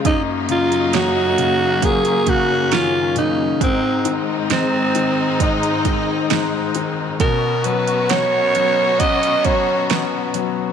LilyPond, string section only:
\new Staff \with { instrumentName = "String section" } { \time 4/4 \key aes \mixolydian \tempo 4 = 67 << { ees'2 des'2 | ees'1 | ges'1 | } \\ { <ges, ges bes>1 | <aes, aes c'>1 | <ces ces' des'>1 | } >> }